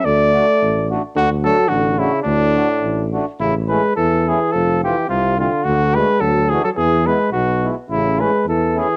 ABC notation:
X:1
M:2/4
L:1/16
Q:"Swing" 1/4=107
K:D
V:1 name="Flugelhorn"
d6 z2 | F2 A2 F2 E2 | D6 z2 | [K:A] E2 B2 A2 G2 |
A2 =G2 =F2 F2 | F2 B2 A2 G A | G2 B2 F3 z | E2 B2 A2 G2 |]
V:2 name="Accordion"
z2 [A,DF]2 z2 [A,DF]2 | z2 [A,DF]2 z2 [A,DF]2 | z2 [A,DF]2 z2 [A,DF]2 | [K:A] z2 [A,CE]2 z2 [A,CE]2 |
z2 [A,=C=F]2 z2 [A,CF]2 | z2 [A,DF]2 z2 [A,DF]2 | z2 [G,B,E]2 z2 [G,B,E]2 | z2 [A,CE]2 z2 [A,CE]2 |]
V:3 name="Euphonium" clef=bass
A,6 z2 | D,2 F,2 D,2 C,2 | A,,6 z2 | [K:A] C,2 G,2 E,2 E,2 |
=F,2 E,2 =C,2 D,2 | D,2 G,2 F,2 E, F, | E,2 G,2 B,,3 z | C,2 G,2 E,2 E,2 |]
V:4 name="Tuba" clef=bass
D,,4 A,,,4 | D,,4 A,,,4 | D,,4 A,,,4 | [K:A] A,,,4 E,,4 |
=F,,,4 =C,,4 | D,,4 D,,4 | E,,4 B,,,4 | A,,,4 E,,4 |]